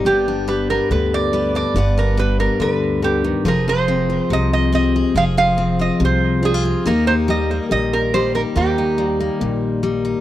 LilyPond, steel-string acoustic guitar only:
\new Staff \with { instrumentName = "Steel-string acoustic guitar" } { \time 4/4 \key g \phrygian \tempo 4 = 141 << { <b d' g'>8 d'4 b4. b'8 d'8 | <b d' b'>8 d'4 b2~ b8 | <f' aes'>8 aes'4 f'4. aes'8 aes'8 | <f' aes'>8 aes'4 f'4. d'16 f'16 f'8 |
<bes ees' g'>8 ees'4 bes4. g'8 ees'8 | <bes ees'>8 ees'4 bes4. ees'8 ees'8 | } \\ { g,4 g4 d4 g4 | g,4 g4 d4 d8 ees8 | f4 c'4 c4 c'4 | f4 c'4 c4 c'4 |
ees4 g4 bes,4 g4 | ees4 g4 bes,4 g4 | } >> }